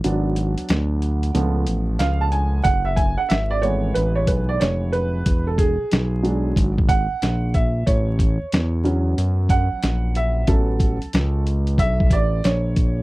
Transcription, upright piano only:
X:1
M:4/4
L:1/16
Q:"Swing 16ths" 1/4=92
K:A
V:1 name="Upright piano"
z12 ^e a g2 | f e g f e d c2 B c B d c2 B2- | B A G6 z2 f4 e2 | c6 z4 f4 e2 |
A6 z2 e2 d2 c4 |]
V:2 name="Upright piano"
[F,B,D]8 [^E,A,B,]8 | z6 [E,G,A,B,]8- [E,G,A,B,]2 | z6 [F,G,D]2 z8 | z6 [F,B,C]8- [F,B,C]2 |
[F,B,C]2 z12 z2 |]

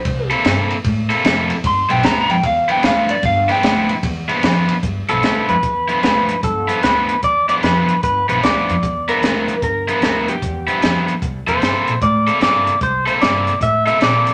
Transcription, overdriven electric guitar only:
X:1
M:4/4
L:1/8
Q:"Swing" 1/4=150
K:Gmix
V:1 name="Overdriven electric guitar"
z [C,_B,EA] [C,B,EA] z2 [C,B,EA] [C,B,EA] z | z [G,,F,B,E] [G,,F,B,E] z2 [G,,F,B,E] [G,,F,B,E] z | z [G,,F,B,E] [G,,F,B,E] z2 [G,,F,B,E] [G,,F,B,E] z | z [G,,F,B,E] [G,,F,B,E] z2 [G,,F,B,E] [G,,F,B,E] z |
z [G,,F,B,E] [G,,F,B,E] z2 [G,,F,B,E] [G,,F,B,E] z | z [G,,F,B,E] [G,,F,B,E] z2 [G,,F,B,E] [G,,F,B,E] z | z [G,,F,B,E] [G,,F,B,E] z2 [G,,F,B,E] [G,,F,B,E] z | z [C,_B,EA] [C,B,EA] z2 [C,B,EA] [C,B,EA] z |
z [C,_B,EA] [C,B,EA] z2 [C,B,EA] [C,B,EA] z |]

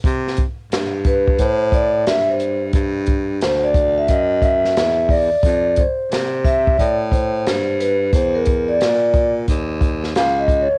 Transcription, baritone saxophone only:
X:1
M:4/4
L:1/16
Q:"Swing 16ths" 1/4=89
K:C
V:1 name="Baritone saxophone" clef=bass
C,2 z2 G,,4 A,,4 G,,4 | G,,4 D,,4 ^F,,4 E,,3 E,, | F,,2 z2 C,4 A,,4 G,,4 | E,,4 _B,,4 ^D,,4 ^C,,3 C,, |]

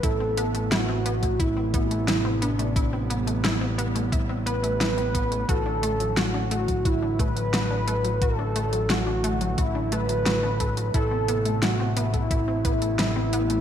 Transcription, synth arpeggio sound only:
X:1
M:4/4
L:1/16
Q:1/4=88
K:Ador
V:1 name="Synth arpeggio sound"
E C B, A, E C B, A, E C B, A, E C B, A, | E C B, A, E C B, A, E C B, A, E C B, A, | F D A, F, F D A, F, F D A, F, F D A, F, | F D A, F, F D A, F, F D A, F, F D A, F, |
E C B, A, E C B, A, E C B, A, E C B, A, |]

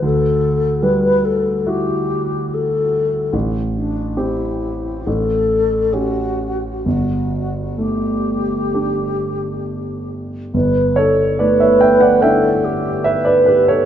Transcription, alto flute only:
X:1
M:4/4
L:1/8
Q:1/4=70
K:Glyd
V:1 name="Alto flute"
A2 B A G2 A2 | z D E2 A2 F2 | F2 G4- G z | B A B2 A G B2 |]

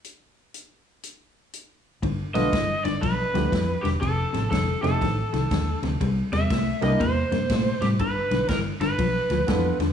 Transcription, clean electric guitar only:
X:1
M:4/4
L:1/8
Q:"Swing" 1/4=121
K:Gmix
V:1 name="Clean electric guitar" clef=bass
z8 | [G,,D,] [G,,D,] [G,,E,] [G,,D,] [G,,F,] [G,,F,] [G,,E,] [G,,D,] | [F,,C,] [F,,C,] [F,,D,] [F,,C,] [F,,_E,] [F,,E,] [F,,D,] [F,,C,] | [C,G,] [C,G,] [C,A,] [C,G,] [C,_B,] [C,B,] [C,A,] [C,G,] |
[G,,D,] [G,,D,] [G,,E,] [G,,D,] [G,,F,] [G,,F,] [G,,E,] [G,,D,] |]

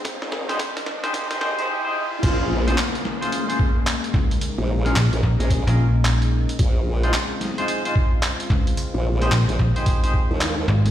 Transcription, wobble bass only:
X:1
M:4/4
L:1/16
Q:"Swing 16ths" 1/4=110
K:Bbdor
V:1 name="Wobble bass" clef=bass
z A,,,3 z4 B,,,2 A,,, B,,, z4 | B,,,4 z12 | z B,,,3 z B,,, z B,,,2 z6 z | B,,,4 z12 |
z B,,,3 z B,,, z4 z E,,3 z2 |]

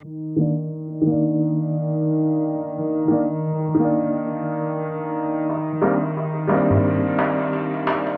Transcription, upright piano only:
X:1
M:4/4
L:1/8
Q:"Swing 16ths" 1/4=88
K:Bbmix
V:1 name="Upright piano"
z [E,B,D] z [E,B,D]4- [E,B,D]- | [E,B,D] [E,B,D] z [E,B,D]4- [E,B,D] | z [G,B,CD] z [G,B,CD]4- [G,B,CD] |]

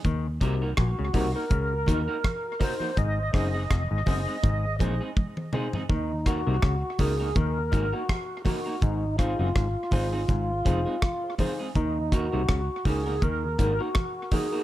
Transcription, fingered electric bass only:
X:1
M:4/4
L:1/16
Q:"Swing 16ths" 1/4=82
K:Ebdor
V:1 name="Fingered electric bass" clef=bass
E,,2 C,,2 B,,, D,, C,, z D,,2 E,, z4 z | A,,,2 G,,,2 F,,, A,,, G,,, z A,,,2 B,,, z4 z | E,,3 C,, D,, z D,,2 E,,2 A,,, z4 z | A,,,3 G,,, A,,, z A,,,2 A,,,2 F,,, z4 z |
E,,3 C,, D,, z D,,2 E,,2 A,,, z4 z |]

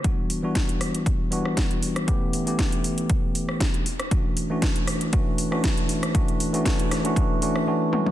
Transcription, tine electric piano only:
X:1
M:4/4
L:1/16
Q:"Swing 16ths" 1/4=118
K:Edor
V:1 name="Tine electric piano"
[E,G,B,DF]3 [E,G,B,DF]6- [E,G,B,DF] [E,G,B,DF]6 | [E,A,B,CG]3 [E,A,B,CG]8- [E,A,B,CG]3 z2 | [E,A,CDF]3 [E,A,CDF]4- [E,A,CDF] [E,A,CDF]3 [E,A,CDF]4- [E,A,CDF] | [E,A,CDF]3 [E,A,CDF] [E,A,CDF]3 [E,A,CDF] [E,A,DF]2 [E,A,CDF]2 [E,A,CDF]2 [E,A,CDF]2 |]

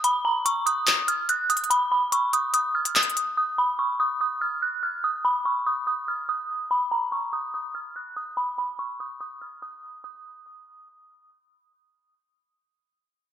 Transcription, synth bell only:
X:1
M:4/4
L:1/8
Q:1/4=144
K:Ebm
V:1 name="Synth bell"
c' b d' e' e' f' g' e' | c' c' d' e' e' f' e'2 | e' c' d' e' e' f' g' f' | e' c' d' e' e' f' e'2 |
c' b d' e' e' f' g' e' | c' c' d' e' e' f' e'2 | e'6 z2 | z8 |]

